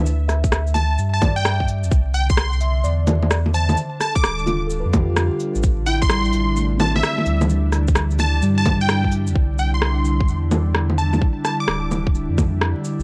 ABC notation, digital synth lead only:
X:1
M:4/4
L:1/16
Q:"Swing 16ths" 1/4=129
K:Dm
V:1 name="Digital synth lead"
z6 a2 z a2 g3 z2 | z2 g c'6 z4 z a2 | z2 a d'4 z8 z | z2 g c'6 z a e4 z |
z6 a2 z a2 g3 z2 | z2 g c'6 z4 z a2 | z2 a d'4 z8 z |]